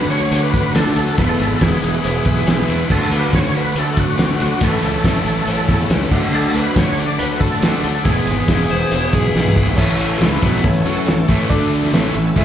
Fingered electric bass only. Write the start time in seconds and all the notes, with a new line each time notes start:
Already playing: D2
0.31 D2
0.75 D2
0.97 D2
1.18 E1
1.40 G#1
1.61 E1
1.83 E1
2.05 E1
2.26 B1
2.48 B1
2.69 E2
2.90 D2
3.12 D2
3.33 D2
3.75 D2
4.18 D2
4.40 D2
4.61 A1
4.83 C#2
5.04 A1
5.25 A1
5.47 A1
5.68 E2
5.90 C#2
6.11 D2
6.32 D2
6.54 D2
6.76 D2
7.19 D2
7.63 D2
7.84 D2
8.05 E1
8.27 G#1
8.49 E1
8.70 E1
8.92 E1
9.13 B1
9.35 B1
9.56 G#1
9.78 A1
10.21 C#2
10.42 B1
10.64 A1
10.85 F#2
11.07 A1
11.29 A1
11.50 D2
11.93 A1
12.15 A1
12.37 C#2